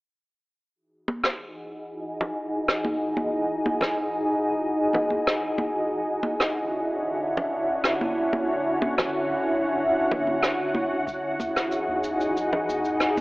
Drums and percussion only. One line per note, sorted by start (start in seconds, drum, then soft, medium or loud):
1.08 high conga medium
1.24 cross-stick medium
2.21 low conga medium
2.68 cross-stick medium
2.85 high conga medium
3.17 high conga medium
3.66 high conga medium
3.81 cross-stick medium
3.81 low conga medium
4.93 high conga medium
4.93 low conga medium
5.10 high conga medium
5.27 cross-stick medium
5.58 high conga medium
6.23 high conga medium
6.40 cross-stick medium
7.37 low conga medium
7.84 cross-stick medium
8.01 high conga medium
8.33 high conga medium
8.82 high conga medium
8.98 cross-stick medium
8.98 low conga medium
10.12 high conga medium
10.12 low conga medium
10.27 high conga medium
10.43 cross-stick medium
10.75 high conga medium
11.07 kick loud
11.07 cabasa soft
11.40 high conga medium
11.40 cabasa medium
11.56 cross-stick medium
11.56 cabasa soft
11.72 cabasa medium
12.04 cabasa medium
12.21 cabasa soft
12.37 cabasa medium
12.53 low conga medium
12.70 cabasa medium
12.85 cabasa soft
13.00 cross-stick medium
13.00 cabasa medium
13.17 high conga medium
13.17 cabasa soft